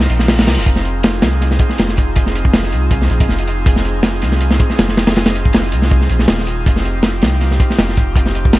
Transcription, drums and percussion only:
0.10 closed hi-hat medium
0.19 snare soft
0.28 snare loud
0.28 closed hi-hat medium
0.38 snare loud
0.38 closed hi-hat medium
0.47 snare loud
0.47 closed hi-hat medium
0.56 snare soft
0.66 kick loud
0.66 closed hi-hat medium
0.76 snare medium
0.85 closed hi-hat medium
1.03 snare loud
1.03 closed hi-hat medium
1.22 snare loud
1.22 closed hi-hat medium
1.41 snare soft
1.41 closed hi-hat medium
1.51 snare soft
1.59 kick loud
1.59 closed hi-hat medium
1.69 snare soft
1.78 snare loud
1.78 closed hi-hat medium
1.88 snare medium
1.97 kick loud
1.97 closed hi-hat medium
2.16 kick loud
2.16 closed hi-hat medium
2.26 snare soft
2.35 closed hi-hat medium
2.45 kick medium
2.53 snare loud
2.53 closed hi-hat medium
2.63 snare medium
2.72 closed hi-hat medium
2.91 kick loud
2.91 closed hi-hat medium
3.02 snare soft
3.10 closed hi-hat medium
3.20 kick loud
3.20 closed hi-hat medium
3.29 snare soft
3.39 closed hi-hat medium
3.48 closed hi-hat medium
3.66 kick loud
3.66 closed hi-hat medium
3.76 snare medium
3.85 closed hi-hat medium
4.03 snare loud
4.03 closed hi-hat loud
4.22 snare soft
4.22 closed hi-hat medium
4.32 snare soft
4.40 closed hi-hat medium
4.51 snare medium
4.60 kick loud
4.60 closed hi-hat medium
4.70 snare soft
4.79 snare loud
4.79 closed hi-hat loud
4.88 snare medium
4.97 snare loud
4.97 closed hi-hat medium
5.07 snare loud
5.07 closed hi-hat medium
5.16 snare loud
5.16 closed hi-hat medium
5.26 snare loud
5.26 closed hi-hat medium
5.35 closed hi-hat medium
5.45 kick medium
5.53 snare loud
5.53 closed hi-hat medium
5.63 snare soft
5.72 closed hi-hat medium
5.82 snare soft
5.90 kick medium
5.90 closed hi-hat medium
6.01 snare soft
6.09 closed hi-hat medium
6.19 snare soft
6.28 snare loud
6.28 closed hi-hat medium
6.38 snare medium
6.47 closed hi-hat medium
6.66 kick loud
6.66 closed hi-hat medium
6.76 snare soft
6.85 closed hi-hat medium
7.03 snare loud
7.03 closed hi-hat medium
7.22 snare loud
7.22 closed hi-hat medium
7.41 snare soft
7.41 closed hi-hat medium
7.51 snare soft
7.60 kick loud
7.60 closed hi-hat medium
7.70 snare soft
7.78 snare loud
7.78 closed hi-hat medium
7.89 snare medium
7.97 kick medium
7.97 closed hi-hat medium
8.15 kick loud
8.15 closed hi-hat loud
8.26 snare soft
8.35 closed hi-hat medium
8.45 kick medium
8.53 snare loud
8.53 closed hi-hat medium

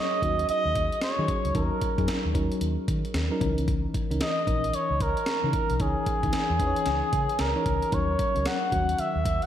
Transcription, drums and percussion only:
0.22 kick medium
0.22 closed hi-hat medium
0.39 closed hi-hat medium
0.49 closed hi-hat medium
0.76 kick medium
0.76 closed hi-hat medium
0.92 closed hi-hat soft
1.02 snare loud
1.02 closed hi-hat medium
1.28 kick medium
1.28 closed hi-hat medium
1.45 closed hi-hat soft
1.55 kick loud
1.55 closed hi-hat medium
1.81 kick medium
1.81 closed hi-hat medium
1.98 kick medium
1.98 closed hi-hat soft
2.08 snare loud
2.08 closed hi-hat medium
2.35 kick medium
2.35 closed hi-hat medium
2.52 closed hi-hat medium
2.61 closed hi-hat medium
2.88 kick medium
2.88 closed hi-hat medium
3.05 closed hi-hat soft
3.14 snare loud
3.14 closed hi-hat medium
3.41 kick medium
3.41 closed hi-hat medium
3.58 closed hi-hat medium
3.68 kick loud
3.68 closed hi-hat medium
3.94 kick medium
3.94 closed hi-hat medium
4.11 closed hi-hat soft
4.21 snare loud
4.21 closed hi-hat medium
4.47 kick medium
4.47 closed hi-hat medium
4.64 closed hi-hat medium
4.73 closed hi-hat medium
5.00 kick medium
5.00 closed hi-hat medium
5.17 closed hi-hat soft
5.26 snare medium
5.26 closed hi-hat medium
5.53 kick medium
5.53 closed hi-hat medium
5.70 closed hi-hat medium
5.80 kick loud
5.80 closed hi-hat medium
6.06 kick medium
6.06 closed hi-hat medium
6.23 kick medium
6.23 closed hi-hat soft
6.33 snare loud
6.33 closed hi-hat medium
6.60 kick medium
6.60 closed hi-hat medium
6.76 closed hi-hat medium
6.86 snare medium
6.86 closed hi-hat medium
7.13 kick medium
7.13 closed hi-hat medium
7.29 closed hi-hat soft
7.39 snare loud
7.39 closed hi-hat medium
7.66 kick medium
7.66 closed hi-hat medium
7.82 closed hi-hat medium
7.92 kick loud
7.92 closed hi-hat medium
8.19 kick medium
8.19 closed hi-hat medium
8.36 closed hi-hat soft
8.46 snare loud
8.46 closed hi-hat medium
8.72 kick medium
8.72 closed hi-hat medium
8.89 closed hi-hat medium
8.99 closed hi-hat medium
9.25 kick loud
9.25 closed hi-hat medium
9.42 closed hi-hat soft

